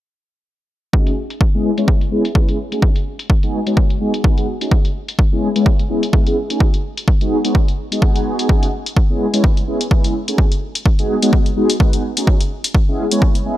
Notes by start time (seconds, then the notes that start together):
0.93 A3 C#4 D#4 F#4 G#4, kick
1.07 closed hi-hat
1.30 closed hi-hat
1.41 kick
1.54 G#3 B3 C#4 E4 G#4
1.77 G#3 B3 C#4 E4 C#5, closed hi-hat
1.88 kick
2.01 closed hi-hat
2.11 G#3 B3 C#4 E4 G#4
2.25 closed hi-hat
2.35 G#3 B3 C#4 E4 B4, kick
2.48 G#3 B3 C#4 E4 G#4, closed hi-hat
2.72 A3 C#4 D#4 F#4 G#4, closed hi-hat
2.82 kick
2.96 closed hi-hat
3.19 closed hi-hat
3.30 kick
3.43 G#3 B3 D#4 F#4 G#4, closed hi-hat
3.66 G#3 B3 D#4 F#4 C#5, closed hi-hat
3.77 kick
3.90 closed hi-hat
4.00 G#3 B3 D#4 F#4 G#4
4.14 closed hi-hat
4.24 G#3 B3 D#4 F#4 B4, kick
4.37 G#3 B3 D#4 F#4 G#4, closed hi-hat
4.61 A3 C#4 D#4 F#4 G#4, closed hi-hat
4.71 kick
4.85 closed hi-hat
5.08 closed hi-hat
5.19 kick
5.32 G#3 B3 C#4 E4 G#4
5.55 G#3 B3 C#4 E4 C#5, closed hi-hat
5.66 kick
5.79 closed hi-hat
5.89 G#3 B3 C#4 E4 G#4
6.03 closed hi-hat
6.13 G#3 B3 C#4 E4 B4, kick
6.26 G#3 B3 C#4 E4 G#4, closed hi-hat
6.50 A3 C#4 D#4 F#4 G#4, closed hi-hat
6.60 kick
6.74 closed hi-hat
6.97 closed hi-hat
7.08 kick
7.21 G#3 B3 D#4 F#4 G#4, closed hi-hat
7.44 G#3 B3 D#4 F#4 C#5, closed hi-hat
7.55 kick
7.68 closed hi-hat
7.91 G#3 B3 D#4 F#4 G#4, closed hi-hat
8.02 kick
8.16 closed hi-hat
8.39 closed hi-hat
8.49 kick
8.63 closed hi-hat
8.86 closed hi-hat
8.97 kick
9.10 G#3 B3 C#4 E4 G#4
9.33 G#3 B3 C#4 E4 C#5, closed hi-hat
9.44 kick
9.57 closed hi-hat
9.67 G#3 B3 C#4 E4 G#4
9.81 closed hi-hat
9.91 G#3 B3 C#4 E4 B4, kick
10.04 G#3 B3 C#4 E4 G#4, closed hi-hat
10.28 A3 C#4 D#4 F#4 G#4, closed hi-hat
10.38 kick
10.52 closed hi-hat
10.75 closed hi-hat
10.86 kick
10.99 G#3 B3 D#4 F#4 G#4, closed hi-hat
11.22 G#3 B3 D#4 F#4 C#5, closed hi-hat
11.33 kick
11.46 closed hi-hat
11.56 G#3 B3 D#4 F#4 G#4
11.70 closed hi-hat
11.80 G#3 B3 D#4 F#4 B4, kick
11.93 G#3 B3 D#4 F#4 G#4, closed hi-hat
12.17 A3 C#4 D#4 F#4 G#4, closed hi-hat
12.27 kick
12.41 closed hi-hat
12.64 closed hi-hat
12.75 kick
12.88 G#3 B3 C#4 E4 G#4
13.11 G#3 B3 C#4 E4 C#5, closed hi-hat
13.22 kick
13.35 closed hi-hat
13.45 G#3 B3 C#4 E4 G#4